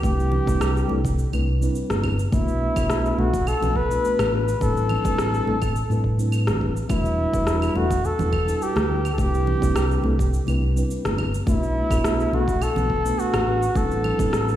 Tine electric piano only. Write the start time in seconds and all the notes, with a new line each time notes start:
0.02 G3 C4 D4 E4 B4
0.45 G3 C4 D4 E4 B4
0.88 G3 C4 D4 E4 A4
1.31 G3 C4 D4 E4 B4
1.60 G3 C4 D4 E4 B4
2.02 G3 C4 D4 E4 B4
2.31 A3 B3 D4 F#4 B4
2.74 A3 B3 D4 F#4 B4
3.16 A3 B3 D4 F#4 A4
3.60 A3 B3 D4 F#4 B4
3.88 A3 B3 D4 F#4 B4
4.31 A3 B3 D4 F#4 B4
4.60 G3 C4 D4 E4 B4
5.04 G3 C4 D4 E4 B4
5.45 G3 C4 D4 E4 A4
5.89 G3 C4 D4 E4 B4
6.18 G3 C4 D4 E4 B4
6.59 G3 C4 D4 E4 B4
6.88 G3 D4 E4 F#4 B4
7.32 G3 D4 F#4 B4
7.73 G3 D4 E4 F#4 A4
8.17 G3 D4 E4 F#4 B4
8.45 G3 D4 E4 F#4 B4
8.88 G3 D4 E4 F#4 B4
9.17 G3 C4 D4 E4 B4
9.60 G3 C4 D4 E4 B4
10.02 G3 C4 D4 E4 A4
10.46 G3 C4 D4 E4 B4
10.75 G3 C4 D4 E4 B4
11.16 G3 C4 D4 E4 B4
11.45 A3 B3 D4 F#4 B4
11.89 A3 B3 D4 F#4 B4
12.31 A3 B3 D4 F#4 A4
12.75 A3 B3 D4 F#4 B4
13.04 A3 B3 D4 F#4 B4
13.46 A3 B3 D4 F#4 B4
13.75 G3 C4 D4 E4 B4
14.18 G3 C4 D4 E4 B4